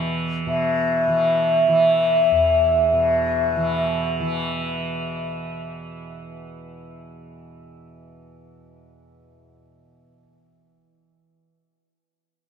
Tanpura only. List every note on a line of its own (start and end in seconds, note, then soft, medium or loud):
0.00 2.31 E2 soft
0.00 0.46 B2 medium
0.00 1.07 E3 medium
0.46 2.92 B2 medium
1.07 1.68 E3 soft
1.68 3.56 E3 medium
2.31 9.46 E2 medium
2.92 10.07 B2 medium
3.56 4.20 E3 medium
4.20 11.35 E3 medium